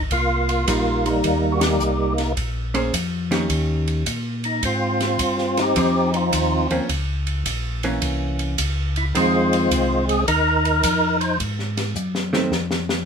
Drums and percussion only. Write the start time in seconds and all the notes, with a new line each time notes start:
0.11 kick, ride
0.49 ride
0.67 kick, hi-hat pedal, ride
1.06 ride
1.24 kick, ride
1.61 snare, ride
1.80 hi-hat pedal
2.18 snare, ride
2.37 kick, ride
2.75 ride
2.93 kick, hi-hat pedal, ride
3.32 snare, ride
3.50 kick, ride
3.88 ride
4.06 kick, hi-hat pedal, ride
4.44 ride
4.63 kick, ride
5.00 snare, ride
5.19 kick, hi-hat pedal, ride
5.38 snare
5.57 snare, ride
5.76 kick, ride
6.14 ride
6.33 kick, hi-hat pedal, ride
6.70 ride
6.89 kick, ride
7.27 ride
7.46 kick, hi-hat pedal, ride
7.83 ride
8.02 kick, ride
8.39 ride
8.58 kick, hi-hat pedal, ride
8.96 ride
9.15 kick, ride
9.53 ride
9.71 kick, hi-hat pedal, ride
10.09 ride
10.28 kick, ride
10.65 ride
10.83 kick, hi-hat pedal, ride
11.21 ride
11.40 kick, ride
11.59 snare
11.77 snare, ride
11.96 hi-hat pedal
12.15 snare
12.33 snare
12.52 snare
12.71 snare
12.89 snare